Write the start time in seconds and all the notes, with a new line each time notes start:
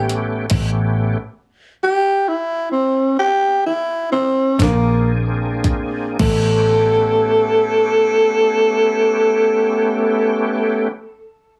Already playing: A1 A3 B3 C#4 G4
0.09 closed hi-hat
0.50 A1 A3 B3 C#4 G4, kick, closed hi-hat, crash
1.84 G4
2.28 E4
2.72 C4
3.19 G4
3.66 E4
4.12 C4
4.58 A#1 A#3 C4 D4 G#4, kick, closed hi-hat
4.62 A#3, snare
5.64 kick, closed hi-hat
6.19 A1 A3 B3 C#4 G4 A4, kick, crash